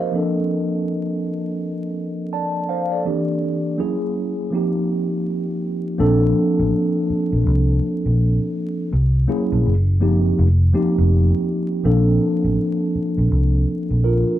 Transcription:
Already playing: tine electric piano F3 A#3 C4 D#4 G4 C5 F5
0.00 tine electric piano A#4 D#5
0.12 tine electric piano F3 A#3 C4 D4 A4
2.33 tine electric piano D5 A5
2.69 tine electric piano C5 F5
2.92 tine electric piano A4 D5
3.05 tine electric piano E3 A#3 C4 D4 G4
3.78 tine electric piano F#3 A#3 C#4 E4 G#4
4.50 tine electric piano F3 A#3 C4 D#4
4.55 tine electric piano G4
5.98 fingered electric bass A#1, tine electric piano F3 A#3 C4 D4 A4
6.59 fingered electric bass A1
7.10 muted fingered electric bass stroke
7.33 fingered electric bass A#1
7.46 fingered electric bass C2
8.06 fingered electric bass A#1
8.93 fingered electric bass C2
9.28 tine electric piano F#3 A#3 C#4 E4 G#4
9.52 fingered electric bass A#1
9.66 fingered electric bass F#1
10.00 tine electric piano F3 A#3 C4 D#4 G4
10.39 fingered electric bass F1
10.73 tine electric piano F3 A#3 C4 D#4 G4
10.98 fingered electric bass F1
11.84 fingered electric bass A#1, tine electric piano F3 A#3 C4 D4 A4
12.44 fingered electric bass A1
12.95 muted fingered electric bass stroke
13.18 fingered electric bass A#1
13.31 fingered electric bass C2
13.91 fingered electric bass A#1
14.04 tine electric piano F4 A#4

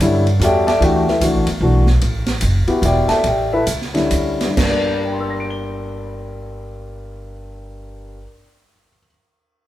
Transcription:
0.00 upright bass G2, grand piano D3 G3 C#4 E4, hi-hat pedal, ride
0.27 ride
0.40 upright bass E2, grand piano G3 C#4 F#4 A4, hi-hat pedal, ride
0.44 grand piano G4 D5 E5 G5
0.67 grand piano A4 D5 E5 A5, snare, ride
0.80 upright bass D2, grand piano E3 A3 D4 F#4 G4 D5 E5 G5, ride
1.08 grand piano E4 A4 B4 E5, snare
1.21 upright bass C#2, grand piano E3 A3 D4 F#4, hi-hat pedal, ride
1.35 upright bass A1
1.47 upright bass G1, ride
1.61 upright bass B1, grand piano E3 A3 D4 F#4
1.87 snare
2.02 upright bass A1, ride
2.27 snare, ride
2.41 upright bass F#1, hi-hat pedal, ride
2.67 grand piano B3 E4 F#4 G4, muted upright bass stroke, ride
2.82 upright bass E1, grand piano G4 D5 E5 G5, hi-hat pedal, ride
3.08 grand piano A4 D5 E5 A5, muted upright bass stroke, snare, ride
3.24 upright bass A1, grand piano G4 D5 E5 G5, ride
3.53 grand piano E4 A4 B4 E5
3.67 upright bass C#2, hi-hat pedal, ride
3.82 snare
3.94 grand piano D3 G3 C#4 E4, snare, ride
4.11 upright bass D2, hi-hat pedal, ride
4.41 snare, ride
4.45 grand piano G2
4.51 grand piano G3
4.57 upright bass G1, grand piano A#3, kick, snare, crash
4.64 grand piano D4
4.70 grand piano D5
5.05 grand piano G5
5.12 grand piano C6
5.20 grand piano E6
5.30 grand piano A#6
5.40 grand piano D7
5.50 grand piano G7

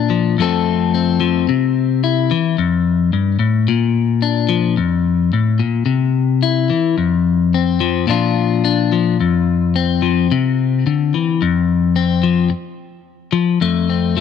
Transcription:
Already playing: clean electric guitar A#2 D4
0.10 clean electric guitar F3
0.38 clean electric guitar F2 F3 A3 C4 A4
0.94 clean electric guitar C4
1.20 clean electric guitar F3
1.49 clean electric guitar C3
2.04 clean electric guitar E4
2.31 clean electric guitar E3
2.58 clean electric guitar F2
3.13 clean electric guitar G2
3.39 clean electric guitar A2
3.68 clean electric guitar A#2
4.22 clean electric guitar D4
4.49 clean electric guitar F3
4.77 clean electric guitar F2
5.33 clean electric guitar A2
5.60 clean electric guitar A#2
5.86 clean electric guitar C3
6.43 clean electric guitar E4
6.70 clean electric guitar E3
6.98 clean electric guitar F2
7.54 clean electric guitar C4
7.80 clean electric guitar F3
8.07 clean electric guitar A#2 F3 D4 F4, muted clean electric guitar stroke
8.65 clean electric guitar D4
8.92 clean electric guitar F3
9.20 clean electric guitar F2
9.76 clean electric guitar C4
10.02 clean electric guitar F3
10.32 clean electric guitar C3
10.87 clean electric guitar D3
11.14 clean electric guitar E3
11.42 clean electric guitar F2
11.96 clean electric guitar C4
12.23 clean electric guitar F3
12.50 muted clean electric guitar stroke
13.33 clean electric guitar F3
13.61 clean electric guitar F2 A3
13.90 clean electric guitar C4
14.17 clean electric guitar F3

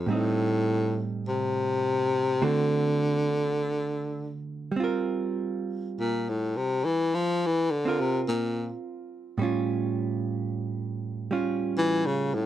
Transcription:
Already playing: baritone saxophone F2
0.06 baritone saxophone G#2, hollow-body jazz guitar A2 G3
0.10 hollow-body jazz guitar C4 D#4
0.14 baritone saxophone A2
1.28 baritone saxophone C3
2.42 hollow-body jazz guitar D3 A3 C4 F#4, baritone saxophone D3
4.72 hollow-body jazz guitar G3
4.76 hollow-body jazz guitar C4 F4
4.84 hollow-body jazz guitar A#4
6.00 baritone saxophone A#2
6.29 baritone saxophone A2
6.57 baritone saxophone C3
6.85 baritone saxophone E3
7.14 baritone saxophone F3
7.46 baritone saxophone E3
7.71 baritone saxophone D3
7.85 hollow-body jazz guitar C4 F4 A#4
8.01 baritone saxophone C3
8.28 baritone saxophone A#2
9.38 hollow-body jazz guitar A2 G3 C#4
9.43 hollow-body jazz guitar F4
11.31 hollow-body jazz guitar G3 C#4 F4
11.78 baritone saxophone E3
12.06 baritone saxophone C#3
12.34 baritone saxophone A2

